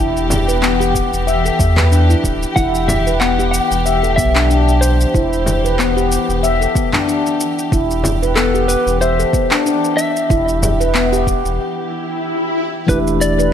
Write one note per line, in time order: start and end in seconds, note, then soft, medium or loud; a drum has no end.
0.00 1.02 E1 medium
0.00 12.84 E3 medium
0.00 2.52 B3 medium
0.00 0.15 E4 loud
0.00 12.84 G4 medium
0.17 shaker soft
0.30 frame drum medium
0.30 shaker medium
0.48 0.62 B4 medium
0.48 shaker soft
0.62 0.79 B3 loud
0.62 clap medium
0.62 shaker soft
0.80 0.94 G4 medium
0.80 shaker soft
0.95 kick medium
0.95 shaker medium
1.13 1.51 E1 medium
1.13 shaker soft
1.27 1.44 E5 medium
1.27 shaker soft
1.45 1.59 A4 medium
1.45 shaker soft
1.59 2.15 E2 medium
1.59 1.76 E5 medium
1.59 kick loud
1.59 shaker medium
1.77 1.90 B4 medium
1.77 clap medium
1.77 frame drum medium
1.77 shaker soft
1.92 2.08 D4 medium
1.92 shaker soft
2.10 2.23 E4 medium
2.10 shaker soft
2.24 2.45 D1 medium
2.24 kick medium
2.24 shaker medium
2.43 shaker soft
2.56 3.60 E1 loud
2.56 2.73 E4 loud
2.56 2.89 F#5 loud
2.56 kick loud
2.56 shaker soft
2.75 shaker soft
2.88 3.22 E5 medium
2.88 frame drum medium
2.88 shaker medium
3.07 3.20 B4 medium
3.07 shaker soft
3.20 3.37 B3 loud
3.20 3.50 F#5 medium
3.20 clap medium
3.20 shaker soft
3.39 3.53 G4 loud
3.39 shaker soft
3.51 3.62 F#5 loud
3.51 shaker medium
3.62 4.19 G5 loud
3.71 4.19 E1 medium
3.71 shaker soft
3.86 4.02 E5 medium
3.86 shaker soft
4.03 4.17 A4 medium
4.03 shaker soft
4.16 5.06 B1 loud
4.16 4.28 B3 medium
4.16 4.77 E5 medium
4.16 kick loud
4.16 shaker medium
4.35 4.44 D4 medium
4.35 clap medium
4.35 shaker soft
4.50 5.13 D4 loud
4.50 shaker soft
4.68 shaker soft
4.81 6.71 C5 medium
4.81 shaker medium
5.01 shaker soft
5.14 6.18 E1 loud
5.14 5.31 E4 loud
5.14 kick loud
5.14 shaker soft
5.33 shaker soft
5.46 frame drum medium
5.46 shaker medium
5.65 5.78 B4 medium
5.65 shaker soft
5.79 5.95 B3 loud
5.79 clap medium
5.79 shaker soft
5.97 6.10 G4 medium
5.97 shaker soft
6.12 shaker medium
6.29 6.67 E1 medium
6.29 shaker soft
6.43 6.60 E5 medium
6.43 shaker soft
6.61 6.75 A4 medium
6.61 shaker soft
6.75 6.86 B3 medium
6.75 kick loud
6.75 shaker medium
6.93 7.02 D4 loud
6.93 clap medium
6.93 frame drum medium
6.93 shaker soft
7.08 7.71 D4 loud
7.08 shaker soft
7.26 shaker soft
7.41 shaker medium
7.59 shaker soft
7.72 8.76 E1 medium
7.72 7.89 E4 loud
7.72 kick loud
7.72 shaker soft
7.91 shaker soft
8.04 frame drum medium
8.04 shaker medium
8.22 8.36 B4 medium
8.22 shaker soft
8.36 8.53 B3 loud
8.36 8.68 A4 medium
8.36 clap medium
8.36 shaker soft
8.55 8.68 G4 loud
8.55 shaker soft
8.68 9.01 B4 medium
8.68 shaker medium
8.87 9.25 E1 medium
8.87 shaker soft
9.01 9.62 C5 medium
9.01 9.18 E5 medium
9.01 shaker soft
9.19 9.33 A4 medium
9.19 shaker soft
9.33 9.44 B3 medium
9.33 kick medium
9.33 shaker medium
9.51 9.60 D4 medium
9.51 clap medium
9.51 shaker soft
9.66 10.29 D4 loud
9.66 shaker soft
9.84 shaker soft
9.97 11.23 E5 loud
9.97 shaker medium
10.16 shaker soft
10.30 11.34 E1 medium
10.30 10.47 E4 loud
10.30 kick loud
10.30 shaker soft
10.49 shaker soft
10.63 frame drum medium
10.63 shaker medium
10.80 10.94 B4 medium
10.80 shaker soft
10.95 11.11 B3 loud
10.95 clap medium
10.95 shaker soft
11.13 11.26 G4 loud
11.13 shaker soft
11.27 kick medium
11.27 shaker medium
11.45 11.59 E1 medium
11.45 shaker soft
11.59 swell medium
12.87 13.53 E1 loud
12.87 13.53 E3 medium
12.87 13.53 A3 medium
12.87 13.53 D4 medium
12.87 13.05 E4 loud
12.87 13.53 G4 loud
12.87 12.98 B4 loud
12.87 kick loud
12.87 shaker soft
13.07 shaker soft
13.21 13.53 D5 medium
13.21 shaker medium
13.39 13.52 B4 medium
13.39 shaker soft